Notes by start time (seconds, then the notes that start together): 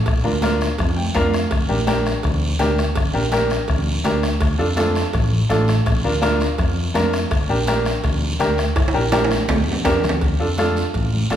0.06 A#1, bombo low, bombo rim, cowbell, long guiro
0.24 D2 D4 F4 A#4, high conga
0.42 D4 F4 A#4, bombo rim, cowbell, high conga, short guiro
0.61 bombo rim, short guiro
0.79 F2, bombo low, bombo rim, cowbell, high conga, low conga, long guiro
0.96 G5, high conga
1.15 F2 D4 F4 A#4 F5, bombo low, bombo rim, cowbell, high conga, low timbale, short guiro
1.34 bombo rim, short guiro
1.51 G1, bombo low, bombo rim, cowbell, high conga, low conga, long guiro
1.69 A#1 D4 G4 A#4, high conga
1.87 D4 G4 A#4, bombo rim, cowbell, high conga, short guiro
2.06 bombo rim, short guiro
2.23 D2, bombo low, bombo rim, cowbell, high conga, low conga, long guiro
2.59 D2 D4 G4 A#4, bombo rim, cowbell, high conga, low timbale, short guiro
2.78 bombo rim, short guiro
2.96 G1, bombo low, bombo rim, cowbell, high conga, low conga, long guiro
3.14 A#1 D4 G4 A#4
3.32 D4 G4 A#4, bombo rim, cowbell, high conga, short guiro
3.50 bombo rim, short guiro
3.68 D2, bombo low, bombo rim, cowbell, high conga, low conga, long guiro
4.04 D2 D4 G4 A#4, bombo rim, cowbell, high conga, short guiro
4.23 bombo rim, short guiro
4.41 D2, bombo low, bombo rim, cowbell, high conga, long guiro
4.58 F2 D4 F4 A4
4.76 D4 F4 A4, bombo rim, cowbell, high conga, short guiro
4.95 bombo rim, short guiro
5.13 A1, bombo low, bombo rim, cowbell, high conga, low conga, long guiro
5.49 A1 D4 F4 A4, bombo rim, cowbell, high conga, short guiro
5.68 bombo rim, short guiro
5.86 A#1, bombo low, bombo rim, cowbell, high conga, low conga, long guiro
6.04 D2 D4 F4 A#4
6.21 D4 F4 A#4, bombo rim, cowbell, high conga, short guiro
6.41 bombo rim, short guiro
6.58 F2, bombo low, bombo rim, cowbell, high conga, low conga, long guiro
6.94 F2 D4 F4 A#4, bombo rim, cowbell, high conga, low timbale, short guiro
7.13 bombo rim, short guiro
7.31 G1, bombo low, bombo rim, cowbell, high conga, long guiro
7.49 A#1 D4 G4 A#4
7.67 D4 G4 A#4, bombo rim, cowbell, high conga, short guiro
7.86 bombo rim, short guiro
8.04 D2, bombo low, bombo rim, cowbell, high conga, low conga, long guiro
8.39 D2 D4 G4 A#4, bombo rim, cowbell, high conga, short guiro
8.58 bombo rim, short guiro
8.76 G1, bombo low, bombo rim, cowbell, high conga, high timbale, long guiro
8.88 high timbale
8.94 A#1 D4 G4 A#4
9.12 D4 G4 A#4, bombo rim, cowbell, high conga, high timbale, short guiro
9.25 high timbale
9.31 bombo rim, high conga, short guiro
9.48 D2, bombo low, bombo rim, cowbell, high conga, low timbale, long guiro
9.67 G2, low conga
9.72 low timbale
9.85 F2 D4 G4 A#4, bombo low, bombo rim, cowbell, low conga, low timbale, short guiro
10.04 D2, bombo rim, low conga, short guiro
10.09 low timbale
10.21 D2, bombo low, cowbell, high conga, long guiro
10.40 F2 D4 F4 A4
10.58 D4 F4 A4, bombo rim, cowbell, high conga, short guiro
10.76 short guiro
10.94 A1, bombo low, cowbell, high conga, low conga, long guiro
11.13 high conga
11.30 A1 D4 F4 A4, bombo rim, cowbell, high conga, low timbale, short guiro